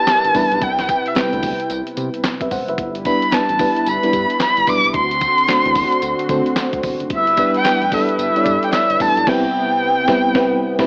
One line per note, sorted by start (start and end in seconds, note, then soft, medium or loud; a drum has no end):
0.00 0.35 G3 medium
0.00 0.60 G3 medium
0.00 0.35 B3 medium
0.00 0.35 D4 medium
0.00 0.36 E4 medium
0.00 2.74 E4 medium
0.00 0.63 G4 medium
0.00 0.64 A#4 medium
0.00 0.36 B4 medium
0.00 0.60 B4 medium
0.00 0.65 A5 loud
0.07 snare loud
0.07 clap medium
0.07 closed hi-hat medium
0.07 tambourine medium
0.24 0.32 G1 medium
0.24 closed hi-hat medium
0.35 0.47 A1 medium
0.35 0.62 G3 medium
0.35 0.62 B3 medium
0.35 0.62 D4 medium
0.35 0.62 E4 medium
0.35 0.62 B4 loud
0.35 kick medium
0.35 open hi-hat medium
0.35 tambourine medium
0.51 0.59 B1 loud
0.51 closed hi-hat medium
0.62 0.94 C2 loud
0.62 2.76 C3 medium
0.62 2.76 B4 medium
0.62 1.09 G5 loud
0.62 kick loud
0.62 closed hi-hat medium
0.79 snare medium
0.79 closed hi-hat medium
0.89 kick loud
0.89 closed hi-hat medium
0.89 tambourine medium
1.06 1.19 E5 medium
1.06 closed hi-hat medium
1.15 1.23 D2 soft
1.15 1.73 G3 medium
1.15 1.73 B3 medium
1.15 1.74 C4 medium
1.15 1.74 E4 medium
1.15 1.74 B4 medium
1.15 snare loud
1.15 clap medium
1.15 closed hi-hat medium
1.15 tambourine loud
1.17 1.71 G5 medium
1.17 clap medium
1.33 1.53 D2 loud
1.33 closed hi-hat soft
1.43 kick loud
1.43 open hi-hat medium
1.43 tambourine medium
1.60 closed hi-hat medium
1.70 1.83 C2 loud
1.70 closed hi-hat medium
1.70 tambourine medium
1.87 closed hi-hat medium
1.97 2.10 C3 loud
1.97 closed hi-hat medium
1.97 tambourine medium
2.14 closed hi-hat medium
2.24 snare loud
2.24 clap medium
2.24 closed hi-hat medium
2.24 tambourine medium
2.41 2.48 C2 loud
2.41 2.51 B4 medium
2.41 2.51 E5 medium
2.41 kick medium
2.41 closed hi-hat medium
2.51 2.64 E1 loud
2.51 2.68 C5 medium
2.51 2.67 F#5 medium
2.51 kick medium
2.51 open hi-hat medium
2.51 tambourine medium
2.68 2.76 F#1 medium
2.68 2.94 B4 medium
2.68 2.94 E5 medium
2.68 closed hi-hat medium
2.78 3.11 G1 loud
2.78 4.92 G3 medium
2.78 4.92 E4 medium
2.78 4.92 B4 medium
2.78 kick loud
2.78 closed hi-hat medium
2.95 closed hi-hat medium
3.05 3.26 G3 medium
3.05 3.26 B3 medium
3.05 3.27 D4 medium
3.05 3.27 E4 medium
3.05 3.27 B4 medium
3.05 3.36 B5 medium
3.05 kick medium
3.05 closed hi-hat medium
3.05 tambourine medium
3.22 closed hi-hat soft
3.32 3.39 A1 medium
3.32 3.53 G3 medium
3.32 3.53 B3 medium
3.32 3.53 D4 medium
3.32 3.54 E4 medium
3.32 3.54 B4 medium
3.32 3.90 A5 medium
3.32 snare loud
3.32 clap medium
3.32 closed hi-hat medium
3.32 tambourine loud
3.49 3.69 A1 loud
3.49 closed hi-hat medium
3.59 3.88 G3 medium
3.59 3.88 B3 medium
3.59 3.89 D4 medium
3.59 3.89 E4 medium
3.59 3.89 B4 medium
3.59 kick loud
3.59 open hi-hat medium
3.59 tambourine medium
3.76 closed hi-hat medium
3.86 3.99 G1 loud
3.86 4.41 B5 loud
3.86 closed hi-hat medium
3.86 tambourine medium
4.03 4.49 G3 medium
4.03 4.49 B3 medium
4.03 4.49 D4 medium
4.03 4.50 E4 medium
4.03 4.50 B4 medium
4.03 closed hi-hat medium
4.13 4.26 G2 loud
4.13 kick loud
4.13 closed hi-hat medium
4.13 tambourine medium
4.30 closed hi-hat medium
4.40 4.71 B5 loud
4.40 snare loud
4.40 clap medium
4.40 closed hi-hat medium
4.40 tambourine medium
4.57 4.65 G1 medium
4.57 closed hi-hat medium
4.67 4.80 B1 loud
4.67 4.94 G3 medium
4.67 4.95 B3 medium
4.67 4.95 D4 medium
4.67 4.95 E4 medium
4.67 4.95 B4 medium
4.67 4.95 D6 loud
4.67 kick medium
4.67 open hi-hat medium
4.67 tambourine medium
4.84 4.92 C2 loud
4.84 closed hi-hat medium
4.94 5.27 D2 loud
4.94 7.08 D3 medium
4.94 7.08 C4 medium
4.94 7.08 F#4 medium
4.94 6.53 C6 loud
4.94 kick loud
4.94 closed hi-hat medium
5.11 closed hi-hat medium
5.21 kick medium
5.21 closed hi-hat medium
5.21 tambourine medium
5.38 closed hi-hat medium
5.48 5.55 E2 medium
5.48 6.07 A3 medium
5.48 6.07 C4 medium
5.48 6.07 D4 medium
5.48 6.07 F#4 medium
5.48 6.07 C5 medium
5.48 snare loud
5.48 clap medium
5.48 closed hi-hat medium
5.48 tambourine loud
5.65 5.85 E2 loud
5.65 closed hi-hat soft
5.75 kick loud
5.75 open hi-hat medium
5.75 tambourine medium
5.92 closed hi-hat soft
6.02 6.15 D2 loud
6.02 closed hi-hat medium
6.02 tambourine medium
6.19 closed hi-hat medium
6.29 6.42 D3 loud
6.29 7.07 A3 medium
6.29 7.07 C4 medium
6.29 7.07 D4 medium
6.29 7.07 F#4 medium
6.29 7.07 C5 loud
6.29 kick medium
6.29 closed hi-hat medium
6.29 tambourine medium
6.46 closed hi-hat medium
6.56 snare loud
6.56 clap medium
6.56 closed hi-hat medium
6.56 tambourine medium
6.73 6.81 D2 loud
6.73 kick loud
6.73 closed hi-hat medium
6.83 6.96 E1 loud
6.83 kick medium
6.83 open hi-hat medium
6.83 tambourine medium
7.00 7.08 F#1 medium
7.00 closed hi-hat medium
7.10 7.43 G1 loud
7.10 9.24 G3 medium
7.10 10.87 E4 medium
7.10 9.24 B4 medium
7.10 7.53 E5 loud
7.10 kick loud
7.10 closed hi-hat medium
7.27 closed hi-hat medium
7.37 7.59 G3 medium
7.37 7.59 B3 medium
7.37 7.59 D4 medium
7.37 7.59 E4 medium
7.37 7.59 B4 medium
7.37 kick medium
7.37 closed hi-hat medium
7.37 tambourine medium
7.54 7.95 G5 loud
7.54 closed hi-hat soft
7.64 7.71 A1 soft
7.64 7.86 G3 medium
7.64 7.86 B3 medium
7.64 7.86 D4 medium
7.64 7.87 E4 medium
7.64 7.87 B4 medium
7.64 snare loud
7.64 clap medium
7.64 closed hi-hat medium
7.64 tambourine loud
7.81 8.02 A1 loud
7.81 closed hi-hat soft
7.92 8.21 G3 medium
7.92 8.21 B3 medium
7.92 8.21 D4 medium
7.92 8.21 E4 medium
7.92 8.21 A4 medium
7.92 8.19 E5 medium
7.92 kick loud
7.92 open hi-hat medium
7.92 tambourine medium
8.09 closed hi-hat medium
8.18 8.31 G1 loud
8.18 8.65 E5 medium
8.18 closed hi-hat medium
8.18 tambourine medium
8.36 8.82 G3 medium
8.36 8.82 B3 medium
8.36 8.82 D4 medium
8.36 8.82 E4 medium
8.36 8.41 C#5 medium
8.36 closed hi-hat medium
8.44 8.58 G2 loud
8.44 8.86 D5 medium
8.44 kick loud
8.44 closed hi-hat medium
8.44 tambourine medium
8.63 8.73 G5 loud
8.63 closed hi-hat medium
8.73 9.03 E5 loud
8.73 snare loud
8.73 clap medium
8.73 closed hi-hat medium
8.73 tambourine medium
8.90 8.97 G1 loud
8.90 closed hi-hat medium
9.00 9.13 A1 loud
9.00 9.26 G3 medium
9.00 9.27 B3 medium
9.00 9.27 D4 medium
9.00 9.27 E4 medium
9.00 9.27 B4 medium
9.00 9.30 A5 loud
9.00 kick medium
9.00 open hi-hat medium
9.00 tambourine medium
9.16 9.24 B1 loud
9.16 closed hi-hat medium
9.27 9.46 C2 loud
9.27 10.87 C3 medium
9.27 9.47 G3 loud
9.27 10.87 B3 medium
9.27 9.47 B3 loud
9.27 9.47 C4 loud
9.27 9.47 E4 loud
9.27 9.47 B4 loud
9.27 10.87 G5 loud
9.27 kick loud
9.27 snare loud
9.27 crash medium
10.08 10.27 C2 loud
10.08 10.27 G3 loud
10.08 10.28 B3 loud
10.08 10.28 C4 loud
10.08 10.28 E4 loud
10.08 10.28 B4 loud
10.08 kick loud
10.08 snare loud
10.35 10.54 C2 loud
10.35 10.54 G3 loud
10.35 10.55 B3 loud
10.35 10.55 C4 loud
10.35 10.55 E4 loud
10.35 10.55 B4 loud
10.35 kick loud
10.35 snare loud
10.79 10.87 C2 loud
10.79 10.87 G3 loud
10.79 10.87 B3 medium
10.79 10.87 C4 loud
10.79 10.87 E4 loud
10.79 10.87 B4 loud
10.79 kick loud
10.79 snare loud